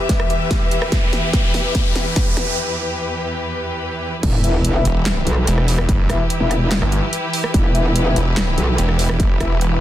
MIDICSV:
0, 0, Header, 1, 9, 480
1, 0, Start_track
1, 0, Key_signature, 1, "minor"
1, 0, Tempo, 413793
1, 1068, Time_signature, 4, 2, 24, 8
1, 11373, End_track
2, 0, Start_track
2, 0, Title_t, "Brass ensemble"
2, 0, Program_c, 0, 61
2, 5150, Note_on_c, 0, 64, 88
2, 5150, Note_on_c, 0, 71, 80
2, 5150, Note_on_c, 0, 76, 97
2, 5241, Note_off_c, 0, 64, 0
2, 5241, Note_off_c, 0, 71, 0
2, 5241, Note_off_c, 0, 76, 0
2, 5510, Note_on_c, 0, 64, 99
2, 5510, Note_on_c, 0, 71, 87
2, 5510, Note_on_c, 0, 76, 110
2, 5655, Note_off_c, 0, 64, 0
2, 5655, Note_off_c, 0, 71, 0
2, 5655, Note_off_c, 0, 76, 0
2, 7069, Note_on_c, 0, 64, 88
2, 7070, Note_on_c, 0, 71, 82
2, 7070, Note_on_c, 0, 76, 97
2, 7215, Note_off_c, 0, 64, 0
2, 7215, Note_off_c, 0, 71, 0
2, 7215, Note_off_c, 0, 76, 0
2, 7430, Note_on_c, 0, 64, 78
2, 7431, Note_on_c, 0, 71, 67
2, 7431, Note_on_c, 0, 76, 82
2, 7575, Note_off_c, 0, 64, 0
2, 7576, Note_off_c, 0, 71, 0
2, 7576, Note_off_c, 0, 76, 0
2, 8989, Note_on_c, 0, 64, 92
2, 8989, Note_on_c, 0, 71, 85
2, 8989, Note_on_c, 0, 76, 101
2, 9080, Note_off_c, 0, 64, 0
2, 9080, Note_off_c, 0, 71, 0
2, 9080, Note_off_c, 0, 76, 0
2, 9350, Note_on_c, 0, 64, 100
2, 9350, Note_on_c, 0, 71, 88
2, 9350, Note_on_c, 0, 76, 106
2, 9495, Note_off_c, 0, 64, 0
2, 9495, Note_off_c, 0, 71, 0
2, 9495, Note_off_c, 0, 76, 0
2, 10910, Note_on_c, 0, 64, 90
2, 10910, Note_on_c, 0, 71, 81
2, 10910, Note_on_c, 0, 76, 99
2, 11055, Note_off_c, 0, 64, 0
2, 11055, Note_off_c, 0, 71, 0
2, 11055, Note_off_c, 0, 76, 0
2, 11270, Note_on_c, 0, 64, 75
2, 11270, Note_on_c, 0, 71, 70
2, 11270, Note_on_c, 0, 76, 87
2, 11373, Note_off_c, 0, 64, 0
2, 11373, Note_off_c, 0, 71, 0
2, 11373, Note_off_c, 0, 76, 0
2, 11373, End_track
3, 0, Start_track
3, 0, Title_t, "String section"
3, 0, Program_c, 1, 48
3, 0, Note_on_c, 1, 67, 68
3, 0, Note_on_c, 1, 71, 71
3, 0, Note_on_c, 1, 76, 73
3, 2989, Note_off_c, 1, 67, 0
3, 2989, Note_off_c, 1, 71, 0
3, 2989, Note_off_c, 1, 76, 0
3, 11373, End_track
4, 0, Start_track
4, 0, Title_t, "String section"
4, 0, Program_c, 2, 48
4, 0, Note_on_c, 2, 40, 73
4, 0, Note_on_c, 2, 52, 70
4, 0, Note_on_c, 2, 67, 69
4, 0, Note_on_c, 2, 71, 80
4, 4862, Note_off_c, 2, 40, 0
4, 4862, Note_off_c, 2, 52, 0
4, 4862, Note_off_c, 2, 67, 0
4, 4862, Note_off_c, 2, 71, 0
4, 4909, Note_on_c, 2, 71, 84
4, 4910, Note_on_c, 2, 52, 78
4, 4910, Note_on_c, 2, 64, 76
4, 4910, Note_on_c, 2, 67, 76
4, 11373, Note_off_c, 2, 52, 0
4, 11373, Note_off_c, 2, 64, 0
4, 11373, Note_off_c, 2, 67, 0
4, 11373, Note_off_c, 2, 71, 0
4, 11373, End_track
5, 0, Start_track
5, 0, Title_t, "Detuned saw bass"
5, 0, Program_c, 3, 39
5, 5629, Note_on_c, 3, 28, 103
5, 6090, Note_off_c, 3, 28, 0
5, 6349, Note_on_c, 3, 28, 102
5, 6810, Note_off_c, 3, 28, 0
5, 6828, Note_on_c, 3, 30, 100
5, 7049, Note_off_c, 3, 30, 0
5, 7068, Note_on_c, 3, 28, 95
5, 7169, Note_off_c, 3, 28, 0
5, 7909, Note_on_c, 3, 31, 97
5, 8130, Note_off_c, 3, 31, 0
5, 9469, Note_on_c, 3, 28, 98
5, 9930, Note_off_c, 3, 28, 0
5, 10189, Note_on_c, 3, 28, 99
5, 10650, Note_off_c, 3, 28, 0
5, 10668, Note_on_c, 3, 30, 98
5, 10889, Note_off_c, 3, 30, 0
5, 10908, Note_on_c, 3, 28, 92
5, 11010, Note_off_c, 3, 28, 0
5, 11029, Note_on_c, 3, 28, 102
5, 11373, Note_off_c, 3, 28, 0
5, 11373, End_track
6, 0, Start_track
6, 0, Title_t, "Wobble bass"
6, 0, Program_c, 4, 39
6, 4909, Note_on_c, 4, 28, 99
6, 5610, Note_off_c, 4, 28, 0
6, 6109, Note_on_c, 4, 35, 97
6, 6330, Note_off_c, 4, 35, 0
6, 7429, Note_on_c, 4, 28, 100
6, 7890, Note_off_c, 4, 28, 0
6, 8748, Note_on_c, 4, 28, 99
6, 9449, Note_off_c, 4, 28, 0
6, 9949, Note_on_c, 4, 35, 96
6, 10170, Note_off_c, 4, 35, 0
6, 11373, End_track
7, 0, Start_track
7, 0, Title_t, "Riser"
7, 0, Program_c, 5, 103
7, 0, Note_on_c, 5, 60, 78
7, 2988, Note_off_c, 5, 60, 0
7, 11373, End_track
8, 0, Start_track
8, 0, Title_t, "Sub drop"
8, 0, Program_c, 6, 103
8, 4908, Note_on_c, 6, 60, 76
8, 6829, Note_off_c, 6, 60, 0
8, 11373, End_track
9, 0, Start_track
9, 0, Title_t, "Drums"
9, 107, Note_on_c, 9, 36, 95
9, 108, Note_on_c, 9, 38, 64
9, 108, Note_on_c, 9, 42, 80
9, 223, Note_off_c, 9, 36, 0
9, 224, Note_off_c, 9, 38, 0
9, 224, Note_off_c, 9, 42, 0
9, 228, Note_on_c, 9, 37, 71
9, 344, Note_off_c, 9, 37, 0
9, 349, Note_on_c, 9, 42, 50
9, 465, Note_off_c, 9, 42, 0
9, 588, Note_on_c, 9, 36, 93
9, 589, Note_on_c, 9, 38, 67
9, 589, Note_on_c, 9, 42, 77
9, 704, Note_off_c, 9, 36, 0
9, 705, Note_off_c, 9, 38, 0
9, 705, Note_off_c, 9, 42, 0
9, 828, Note_on_c, 9, 42, 50
9, 944, Note_off_c, 9, 42, 0
9, 949, Note_on_c, 9, 37, 75
9, 1065, Note_off_c, 9, 37, 0
9, 1067, Note_on_c, 9, 36, 96
9, 1068, Note_on_c, 9, 38, 68
9, 1068, Note_on_c, 9, 42, 73
9, 1183, Note_off_c, 9, 36, 0
9, 1184, Note_off_c, 9, 38, 0
9, 1184, Note_off_c, 9, 42, 0
9, 1309, Note_on_c, 9, 38, 75
9, 1309, Note_on_c, 9, 42, 51
9, 1425, Note_off_c, 9, 38, 0
9, 1425, Note_off_c, 9, 42, 0
9, 1548, Note_on_c, 9, 36, 100
9, 1549, Note_on_c, 9, 38, 73
9, 1549, Note_on_c, 9, 42, 71
9, 1664, Note_off_c, 9, 36, 0
9, 1665, Note_off_c, 9, 38, 0
9, 1665, Note_off_c, 9, 42, 0
9, 1788, Note_on_c, 9, 38, 78
9, 1788, Note_on_c, 9, 46, 86
9, 1904, Note_off_c, 9, 38, 0
9, 1904, Note_off_c, 9, 46, 0
9, 2028, Note_on_c, 9, 36, 92
9, 2028, Note_on_c, 9, 38, 82
9, 2028, Note_on_c, 9, 42, 79
9, 2144, Note_off_c, 9, 36, 0
9, 2144, Note_off_c, 9, 38, 0
9, 2144, Note_off_c, 9, 42, 0
9, 2268, Note_on_c, 9, 38, 83
9, 2268, Note_on_c, 9, 42, 50
9, 2384, Note_off_c, 9, 38, 0
9, 2384, Note_off_c, 9, 42, 0
9, 2508, Note_on_c, 9, 36, 92
9, 2508, Note_on_c, 9, 38, 81
9, 2508, Note_on_c, 9, 42, 76
9, 2624, Note_off_c, 9, 36, 0
9, 2624, Note_off_c, 9, 38, 0
9, 2624, Note_off_c, 9, 42, 0
9, 2748, Note_on_c, 9, 38, 89
9, 2748, Note_on_c, 9, 42, 53
9, 2864, Note_off_c, 9, 38, 0
9, 2864, Note_off_c, 9, 42, 0
9, 4909, Note_on_c, 9, 36, 119
9, 4909, Note_on_c, 9, 42, 78
9, 4909, Note_on_c, 9, 49, 95
9, 5025, Note_off_c, 9, 36, 0
9, 5025, Note_off_c, 9, 42, 0
9, 5025, Note_off_c, 9, 49, 0
9, 5149, Note_on_c, 9, 42, 55
9, 5265, Note_off_c, 9, 42, 0
9, 5389, Note_on_c, 9, 42, 77
9, 5505, Note_off_c, 9, 42, 0
9, 5629, Note_on_c, 9, 42, 57
9, 5745, Note_off_c, 9, 42, 0
9, 5869, Note_on_c, 9, 38, 119
9, 5869, Note_on_c, 9, 39, 98
9, 5869, Note_on_c, 9, 42, 82
9, 5985, Note_off_c, 9, 38, 0
9, 5985, Note_off_c, 9, 39, 0
9, 5985, Note_off_c, 9, 42, 0
9, 6110, Note_on_c, 9, 42, 54
9, 6226, Note_off_c, 9, 42, 0
9, 6349, Note_on_c, 9, 42, 83
9, 6465, Note_off_c, 9, 42, 0
9, 6470, Note_on_c, 9, 37, 56
9, 6586, Note_off_c, 9, 37, 0
9, 6589, Note_on_c, 9, 46, 93
9, 6705, Note_off_c, 9, 46, 0
9, 6710, Note_on_c, 9, 37, 79
9, 6826, Note_off_c, 9, 37, 0
9, 6828, Note_on_c, 9, 36, 120
9, 6830, Note_on_c, 9, 42, 76
9, 6944, Note_off_c, 9, 36, 0
9, 6946, Note_off_c, 9, 42, 0
9, 7068, Note_on_c, 9, 36, 63
9, 7070, Note_on_c, 9, 37, 75
9, 7070, Note_on_c, 9, 42, 53
9, 7184, Note_off_c, 9, 36, 0
9, 7186, Note_off_c, 9, 37, 0
9, 7186, Note_off_c, 9, 42, 0
9, 7310, Note_on_c, 9, 42, 79
9, 7426, Note_off_c, 9, 42, 0
9, 7550, Note_on_c, 9, 37, 58
9, 7550, Note_on_c, 9, 42, 52
9, 7666, Note_off_c, 9, 37, 0
9, 7666, Note_off_c, 9, 42, 0
9, 7789, Note_on_c, 9, 38, 125
9, 7789, Note_on_c, 9, 39, 92
9, 7789, Note_on_c, 9, 42, 82
9, 7905, Note_off_c, 9, 38, 0
9, 7905, Note_off_c, 9, 39, 0
9, 7905, Note_off_c, 9, 42, 0
9, 7909, Note_on_c, 9, 37, 76
9, 8025, Note_off_c, 9, 37, 0
9, 8029, Note_on_c, 9, 42, 52
9, 8145, Note_off_c, 9, 42, 0
9, 8269, Note_on_c, 9, 42, 78
9, 8385, Note_off_c, 9, 42, 0
9, 8509, Note_on_c, 9, 46, 92
9, 8625, Note_off_c, 9, 46, 0
9, 8629, Note_on_c, 9, 37, 78
9, 8745, Note_off_c, 9, 37, 0
9, 8748, Note_on_c, 9, 36, 127
9, 8749, Note_on_c, 9, 42, 76
9, 8864, Note_off_c, 9, 36, 0
9, 8865, Note_off_c, 9, 42, 0
9, 8989, Note_on_c, 9, 42, 51
9, 9105, Note_off_c, 9, 42, 0
9, 9229, Note_on_c, 9, 42, 71
9, 9345, Note_off_c, 9, 42, 0
9, 9469, Note_on_c, 9, 42, 52
9, 9585, Note_off_c, 9, 42, 0
9, 9709, Note_on_c, 9, 38, 127
9, 9709, Note_on_c, 9, 39, 91
9, 9709, Note_on_c, 9, 42, 83
9, 9825, Note_off_c, 9, 38, 0
9, 9825, Note_off_c, 9, 39, 0
9, 9825, Note_off_c, 9, 42, 0
9, 9949, Note_on_c, 9, 42, 50
9, 10065, Note_off_c, 9, 42, 0
9, 10189, Note_on_c, 9, 42, 74
9, 10305, Note_off_c, 9, 42, 0
9, 10309, Note_on_c, 9, 37, 59
9, 10425, Note_off_c, 9, 37, 0
9, 10429, Note_on_c, 9, 46, 88
9, 10545, Note_off_c, 9, 46, 0
9, 10550, Note_on_c, 9, 37, 81
9, 10666, Note_off_c, 9, 37, 0
9, 10668, Note_on_c, 9, 36, 117
9, 10669, Note_on_c, 9, 42, 69
9, 10784, Note_off_c, 9, 36, 0
9, 10785, Note_off_c, 9, 42, 0
9, 10908, Note_on_c, 9, 36, 65
9, 10909, Note_on_c, 9, 37, 82
9, 10909, Note_on_c, 9, 42, 52
9, 11024, Note_off_c, 9, 36, 0
9, 11025, Note_off_c, 9, 37, 0
9, 11025, Note_off_c, 9, 42, 0
9, 11150, Note_on_c, 9, 42, 70
9, 11266, Note_off_c, 9, 42, 0
9, 11373, End_track
0, 0, End_of_file